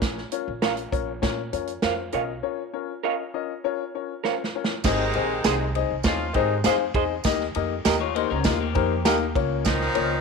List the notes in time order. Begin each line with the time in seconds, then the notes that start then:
Already playing: A#1 C#4 F4 A#4 C#5
0.02 kick, snare, closed hi-hat
0.18 snare
0.32 C#4 F4 A#4 C#5, closed hi-hat
0.48 A#1
0.62 C#4 F4 A#4 C#5 F5, snare, closed hi-hat
0.77 closed hi-hat
0.92 A#1 C#4 F4 A#4 C#5, kick, closed hi-hat
1.22 A#2 C#4 F4 A#4 C#5, kick, snare, closed hi-hat
1.53 F2 C#4 F4 A#4 C#5, closed hi-hat
1.67 closed hi-hat
1.82 F2 C#4 F4 A#4 C5 C#5 F5, snare, closed hi-hat
2.12 B1 C#4 F4 A#4 C#5 D#5 F5, closed hi-hat
2.43 C#4 F4 A#4 C#5
2.73 C#4 F4 A#4 C#5
3.03 C#4 F4 A#4 C#5 D#5 F5
3.34 C#4 F4 A#4 D#5
3.64 C#4 F4 A#4 C#5
3.95 C#4 F4 A#4 C#5
4.24 C#4 F4 A#4 C5 C#5 F5, snare
4.44 snare
4.55 C#4 F4 A#4 C#5
4.64 snare
4.84 G#1 C3 D#3 G#3 C4 D#4 G#4 C5 D#5, kick, snare, crash, tambourine
5.13 A#1 C4 D#4 G#4 C5 D#5, ride
5.44 C2 C4 D#4 G#4 C5 D#5, snare, ride, tambourine
5.75 C4 D#4 G#4 C5 D#5, ride
5.90 C2
6.03 D#2 F3 C4 C#4 D#4 F4 G#4 C5 D#5, kick, snare, ride, tambourine
6.34 G#2 C3 D#3 G#3 C4 D#4 G#4 C5 D#5, kick, ride
6.64 C4 D#4 G#4 C5 D#5 F5, snare, ride, tambourine
6.94 E2 C4 D#4 G#4 C5 D#5, kick, ride
7.24 D#2 A#3 D#4 G4 A#4 D#5, kick, snare, ride, tambourine
7.41 snare
7.55 F2 A#3 D#4 G4 A#4 D#5, ride
7.85 D#2 A#3 D#4 G4 A#4 D#5, snare, ride, tambourine
8.00 F4 C#5
8.15 A#3 D#4 G4 A#4 C5 D#5, ride
8.30 C#2 C#4 A#4
8.44 D#2 A#3 D#4 F4 G4 A#4 D#5, kick, snare, ride, tambourine
8.60 A#3 G4
8.75 F2 A#3 D#4 G4 A#4 C5 G5, kick, ride
9.05 D#2 A#3 D#4 G4 A#4 D#5 F5 A#5, snare, ride, tambourine
9.35 C#2 A#3 C#4 F4 A#4 C#5, kick, ride
9.65 A#2 D#3 F3 D#4, kick, snare, ride, tambourine
9.81 snare
9.95 C#2 A#3 C#4 F4 A#4 C#5, ride